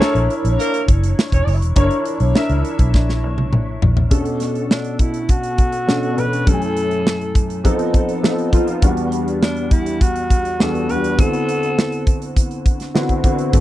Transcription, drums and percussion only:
0.02 snare
0.15 closed hi-hat
0.30 closed hi-hat
0.45 closed hi-hat
0.60 closed hi-hat
0.74 closed hi-hat
0.88 kick, closed hi-hat
1.03 closed hi-hat
1.19 snare
1.32 kick, closed hi-hat
1.48 open hi-hat
1.62 closed hi-hat
1.76 kick, closed hi-hat
1.91 closed hi-hat
2.05 closed hi-hat
2.20 closed hi-hat
2.35 snare
2.49 closed hi-hat
2.65 closed hi-hat
2.79 kick, closed hi-hat
2.94 kick, snare
3.09 snare
3.38 high tom
3.53 mid tom
3.82 floor tom
3.97 floor tom
4.11 kick, closed hi-hat
4.25 closed hi-hat
4.40 snare, closed hi-hat
4.55 closed hi-hat
4.71 snare
4.84 closed hi-hat
4.99 kick, closed hi-hat
5.14 closed hi-hat
5.29 kick, closed hi-hat
5.43 closed hi-hat
5.58 kick, closed hi-hat
5.72 closed hi-hat
5.89 snare
6.03 closed hi-hat
6.18 closed hi-hat
6.33 closed hi-hat
6.47 kick, closed hi-hat
6.62 closed hi-hat
6.76 closed hi-hat
6.91 closed hi-hat
7.07 snare
7.21 closed hi-hat
7.35 kick, closed hi-hat
7.50 closed hi-hat
7.65 kick, closed hi-hat
7.79 closed hi-hat
7.94 kick, closed hi-hat
8.09 closed hi-hat
8.24 snare
8.38 closed hi-hat
8.53 kick, closed hi-hat
8.68 closed hi-hat
8.82 kick, closed hi-hat
8.97 closed hi-hat
9.12 closed hi-hat
9.28 closed hi-hat
9.43 snare
9.57 closed hi-hat
9.71 kick, closed hi-hat
9.86 closed hi-hat
10.01 kick, closed hi-hat
10.16 closed hi-hat
10.30 kick, closed hi-hat
10.45 closed hi-hat
10.60 snare
10.75 closed hi-hat
10.89 closed hi-hat
11.04 closed hi-hat
11.19 kick, closed hi-hat
11.33 closed hi-hat
11.49 closed hi-hat
11.63 closed hi-hat
11.79 snare
11.92 closed hi-hat
12.07 kick, closed hi-hat
12.22 closed hi-hat
12.37 kick, closed hi-hat
12.51 closed hi-hat
12.66 kick, closed hi-hat
12.80 snare, closed hi-hat
12.96 snare
13.09 kick, closed hi-hat
13.24 kick, closed hi-hat
13.38 closed hi-hat
13.53 kick, closed hi-hat

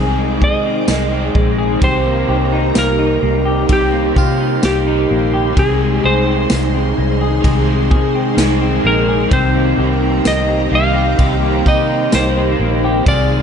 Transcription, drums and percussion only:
0.42 kick
0.88 snare, ride, tambourine
1.35 kick
1.82 kick, ride
2.75 snare, ride, tambourine
3.69 kick, ride
4.16 kick
4.63 snare, ride, tambourine
5.57 kick, ride
6.50 snare, ride, tambourine
7.44 kick, ride
7.91 kick
8.38 snare, ride, tambourine
9.31 kick, ride
10.25 snare, ride, tambourine
11.19 kick, ride
11.66 kick
12.12 snare, ride, tambourine
13.06 kick, ride

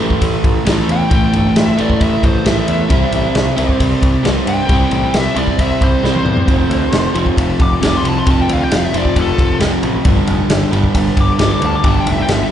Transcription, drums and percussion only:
0.10 kick
0.22 kick, ride
0.44 kick, ride
0.66 snare, ride
0.89 ride
1.11 kick, ride
1.33 ride
1.56 snare, ride
1.78 ride
1.90 kick
2.01 kick, ride
2.23 kick, ride
2.46 snare, ride
2.68 ride
2.90 kick, ride
3.12 ride
3.35 snare, ride
3.58 ride
3.69 kick
3.80 kick, ride
4.02 kick, ride
4.25 snare, ride
4.47 ride
4.69 kick, ride
4.91 ride
5.14 snare, ride
5.36 ride
5.47 kick
5.59 kick, ride
5.81 kick, ride
6.05 snare
6.15 high tom
6.26 mid tom
6.37 floor tom
6.48 kick, ride
6.71 ride
6.92 snare, ride
7.15 ride
7.26 kick
7.37 kick, ride
7.60 kick, ride
7.83 snare, ride
8.05 ride
8.27 kick, ride
8.49 ride
8.71 snare, ride
8.94 ride
9.05 kick
9.16 kick, ride
9.38 kick, ride
9.60 snare, ride
9.83 ride
10.05 kick, ride
10.27 ride
10.50 snare, ride
10.73 ride
10.84 kick
10.95 kick, ride
11.17 kick, ride
11.39 snare, ride
11.62 ride
11.84 kick, ride
12.07 ride
12.28 snare, ride

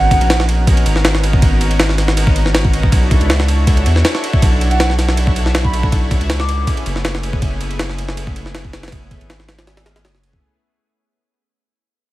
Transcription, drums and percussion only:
0.11 kick, ride
0.21 ride
0.30 snare, ride
0.40 snare
0.49 ride
0.67 kick, ride
0.77 ride
0.86 ride
0.96 snare
1.05 snare, ride
1.15 snare
1.23 ride
1.33 kick
1.42 kick, ride
1.61 ride
1.71 ride
1.80 snare, ride
1.89 snare
1.98 snare, ride
2.08 snare
2.17 ride
2.27 kick
2.36 ride
2.46 snare
2.55 snare, ride
2.65 kick
2.73 ride
2.83 kick
2.92 kick, ride
3.11 kick, ride
3.21 ride
3.30 snare, ride
3.40 snare
3.48 ride
3.67 kick, ride
3.77 ride
3.86 ride
3.96 snare
4.05 snare, ride
4.15 snare
4.24 ride
4.33 kick
4.42 kick, ride
4.61 ride
4.71 ride
4.80 snare, ride
4.90 snare
4.99 snare, ride
5.09 snare
5.17 ride
5.27 kick
5.36 ride
5.46 snare
5.55 snare, ride
5.65 kick
5.74 ride
5.83 kick
5.92 kick, ride
6.11 kick, ride
6.21 ride
6.30 snare, ride
6.40 snare
6.49 ride
6.67 kick, ride
6.77 ride
6.86 ride
6.96 snare
7.05 snare, ride
7.15 snare
7.23 ride
7.33 kick
7.42 kick, ride
7.61 ride
7.71 ride
7.79 snare, ride
7.89 snare
7.98 ride
8.08 snare
8.17 ride
8.27 kick
8.36 ride
8.46 snare
8.55 snare, ride
8.65 kick
8.73 snare, ride
8.83 snare, ride
8.88 snare, ride
8.92 kick, ride
9.11 kick, ride
9.21 ride
9.30 snare, ride
9.40 snare
9.49 snare, ride
9.59 snare, ride
9.67 snare, ride
9.77 snare, ride
9.86 snare, ride
9.96 snare, ride
10.05 snare, ride
10.15 snare
10.23 ride
10.33 kick

